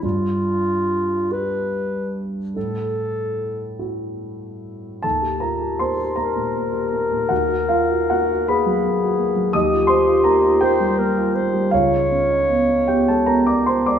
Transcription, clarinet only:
0.04 1.34 F4 medium
1.32 2.24 B4 medium
2.56 3.76 A4 soft
6.19 8.51 A#4 medium
8.50 9.55 G#4 soft
9.55 10.65 G4 medium
10.63 11.00 C5 medium
10.99 11.37 A#4 soft
11.35 11.72 C5 soft
11.73 13.44 C#5 medium

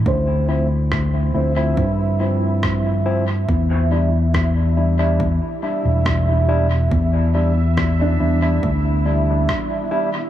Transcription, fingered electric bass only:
0.06 1.31 D2 medium
1.35 1.73 D2 medium
1.77 3.45 G2 medium
3.49 5.38 E2 loud
5.85 6.88 E1 medium
6.92 8.16 E2 loud
8.21 8.58 E2 medium
8.63 9.45 D2 medium

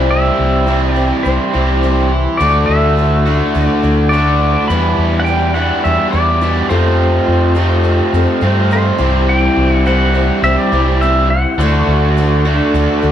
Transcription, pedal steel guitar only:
0.11 0.92 E5 medium
0.92 1.28 D5 medium
1.23 2.42 C5 medium
2.37 2.65 D5 medium
2.66 3.66 E5 medium
3.66 4.09 D5 medium
4.09 4.70 D5 medium
4.68 5.20 B5 loud
5.20 5.24 F#5 medium
5.25 5.52 G5 medium
5.54 5.84 F#5 medium
5.84 6.14 E5 medium
6.11 6.65 D5 medium
6.69 7.52 C5 medium
8.73 9.31 C5 medium
9.29 9.72 G5 loud
9.72 9.86 F#5 loud
9.87 10.40 F#5 loud
10.44 10.59 E5 medium
10.58 10.98 D5 medium
11.01 11.30 E5 medium
11.30 12.59 F#5 medium
12.59 13.12 E5 medium

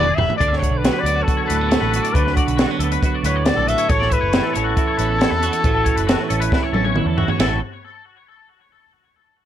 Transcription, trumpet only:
0.00 0.17 D5 loud
0.15 0.36 E5 loud
0.36 0.58 D5 loud
0.57 0.79 C#5 medium
0.77 1.01 B4 medium
0.99 1.24 D5 loud
1.23 1.44 A4 medium
1.45 2.14 A4 medium
2.13 2.34 B4 medium
2.35 2.76 F#4 medium
3.26 3.47 C#5 medium
3.45 3.70 D5 loud
3.68 3.91 E5 loud
3.90 4.14 C#5 loud
4.12 4.55 B4 loud
4.56 6.92 A4 loud

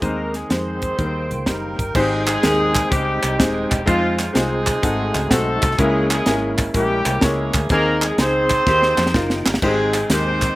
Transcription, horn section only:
0.03 0.34 A#3 medium
0.03 0.50 D#4 medium
0.03 0.34 A#4 medium
0.34 0.49 G#3 medium
0.34 0.49 G#4 medium
0.50 1.75 C4 medium
0.50 1.30 D#4 medium
0.50 1.75 G#4 medium
0.50 1.75 C5 medium
1.47 1.92 A#3 medium
1.47 1.92 D#4 medium
1.47 1.92 G4 medium
1.47 1.92 A#4 medium
1.95 2.25 G#3 loud
1.95 2.27 C4 medium
1.95 2.27 D#4 medium
1.95 2.25 G#4 loud
2.26 2.87 G#3 loud
2.26 2.91 C4 medium
2.26 2.91 D#4 medium
2.26 2.87 G#4 loud
2.90 3.39 G3 loud
2.90 3.84 C4 medium
2.90 3.84 D#4 medium
2.90 3.39 G4 loud
3.38 3.70 G#3 medium
3.38 3.70 G#4 loud
3.69 3.87 G3 medium
3.69 3.87 G4 loud
3.86 4.16 F3 loud
3.86 4.34 G#3 medium
3.86 4.36 C4 medium
3.86 4.16 F4 loud
4.18 4.34 F3 medium
4.18 4.34 F4 medium
4.34 5.31 G#3 loud
4.34 5.28 C4 medium
4.34 5.28 D#4 medium
4.34 5.31 G#4 loud
5.30 5.78 A3 loud
5.30 5.76 C4 medium
5.30 5.76 F#4 medium
5.30 5.78 A4 loud
5.78 6.09 G#3 medium
5.78 6.10 E4 medium
5.78 6.09 G#4 loud
6.10 6.51 G#3 medium
6.10 6.75 E4 medium
6.10 6.51 G#4 medium
6.76 7.20 G3 medium
6.76 7.67 A#3 medium
6.76 7.23 E4 medium
6.76 7.20 G4 loud
7.24 7.71 G#3 medium
7.24 7.68 E4 medium
7.24 7.71 G#4 loud
7.70 8.00 A#3 loud
7.70 8.18 D#4 medium
7.70 8.00 A#4 loud
8.03 8.18 G#3 medium
8.03 8.18 G#4 loud
8.19 9.46 C4 loud
8.19 9.42 D#4 medium
8.19 9.42 G#4 medium
8.19 9.46 C5 loud
9.62 10.07 G#3 loud
9.62 10.10 C4 medium
9.62 10.10 D#4 medium
9.62 10.07 G#4 loud
10.10 10.55 C4 loud
10.10 10.55 D#4 medium
10.10 10.55 G4 medium
10.10 10.55 C5 loud

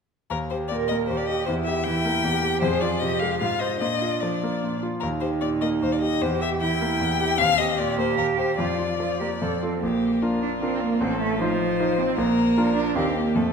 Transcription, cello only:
0.70 1.06 A#4 soft
1.09 1.48 G4 soft
1.47 1.85 E4 soft
1.85 2.26 E4 medium
2.24 2.65 G4 medium
2.63 3.02 G#4 medium
3.02 3.41 G4 medium
3.41 3.81 F4 soft
3.82 4.81 D4 soft
5.02 6.24 D#4 soft
6.22 6.61 G4 medium
6.61 7.40 E4 medium
7.38 7.77 C4 medium
7.77 8.56 G4 medium
8.58 8.94 F4 soft
9.00 9.19 F4 soft
9.20 9.28 G4 soft
9.41 9.60 A4 soft
9.60 9.80 C4 soft
9.81 10.40 A#3 soft
10.42 10.50 D4 medium
10.61 10.82 C4 medium
10.81 11.02 A#3 medium
11.01 11.20 C4 medium
11.21 11.40 A3 medium
11.41 12.00 F3 medium
11.98 12.19 C4 medium
12.17 12.76 A#3 medium
12.76 12.97 D4 medium
12.96 13.17 C4 medium
13.16 13.37 A#3 medium
13.36 13.53 A3 soft

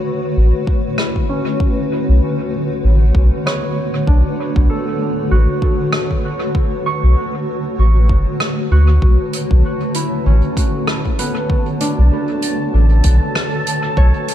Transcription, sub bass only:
0.37 0.52 A1 loud
2.09 2.20 B1 medium
2.84 3.12 A1 medium
3.15 3.30 B1 medium
4.07 4.23 B1 medium
4.56 4.68 B1 medium
5.31 5.47 A1 loud
7.03 7.15 B1 medium
7.79 8.11 A1 medium
8.09 8.25 F#1 medium
8.71 8.99 D2 medium
9.02 9.18 B1 medium
9.51 9.63 B1 medium
10.26 10.42 A1 loud
11.99 12.10 B1 medium
12.74 13.01 A1 medium
13.04 13.20 B1 medium
13.97 14.13 B1 medium

